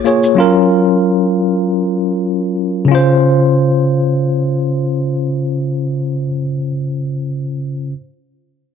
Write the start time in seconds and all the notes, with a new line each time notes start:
0.04 A#3 F4 G#4 C#5, shaker
0.24 shaker
0.35 F#3 C#4 F4
0.40 A#4
2.85 C#3 C#4
2.91 F4 C5